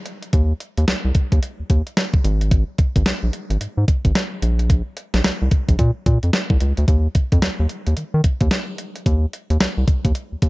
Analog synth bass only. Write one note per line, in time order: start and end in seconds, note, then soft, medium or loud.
0.33 0.53 D#2 loud
0.78 0.85 D#2 loud
0.88 0.95 C2 soft
1.05 1.12 C2 medium
1.32 1.40 D#2 medium
1.60 1.64 D#2 soft
1.70 1.82 D#2 medium
2.24 2.64 G#1 loud
2.96 3.03 G#1 loud
3.06 3.13 A#1 soft
3.23 3.30 A#1 medium
3.50 3.58 G#1 medium
3.61 3.67 G#2 soft
3.77 3.85 G#2 medium
4.05 4.12 G#1 medium
4.42 4.82 A#1 medium
5.14 5.21 A#1 loud
5.25 5.31 C2 soft
5.42 5.49 C2 medium
5.69 5.76 A#1 medium
5.79 5.91 A#2 loud
6.06 6.18 A#2 loud
6.24 6.31 F2 medium
6.50 6.58 C2 medium
6.61 6.73 C#2 medium
6.78 6.85 D2 loud
6.88 7.08 D#2 loud
7.33 7.40 F2 medium
7.43 7.50 D#2 soft
7.60 7.67 D#2 medium
7.87 7.94 D#2 medium
7.97 8.04 D#3 soft
8.14 8.21 D#3 medium
8.41 8.49 D#2 loud
9.06 9.26 D#2 loud
9.50 9.58 D#2 loud
9.61 9.67 C2 soft
9.78 9.85 C2 medium
10.05 10.12 D#2 medium
10.32 10.36 D#2 soft
10.43 10.49 D#2 medium